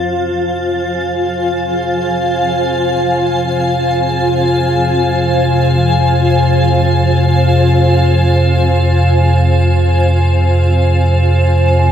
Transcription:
Already playing: F2 C3 F4 C5 F5 G#5
11.79 G#5

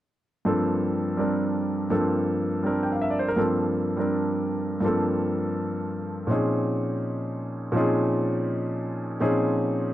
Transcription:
0.45 G2 F3 A#3 C4 A4
1.17 G3 C4 D4 A#4
1.90 G2 F3 A#3 C4 A4
2.63 G3 C4 D4 A#4
2.83 G5
2.92 F5
3.01 E5
3.10 D5
3.19 C5
3.28 A#4
3.36 G2 F3 A#3 C4 A4
3.97 G3 C4 D4 A#4
4.81 G2 F3 A#3
4.85 C4 A4
6.27 A#2 F3 C4 C#4 D#4
6.32 G#4
7.72 A#2 F3 C4 C#4
7.76 D#4 G#4
9.20 A#2 F3 C4 C#4 D#4 G#4

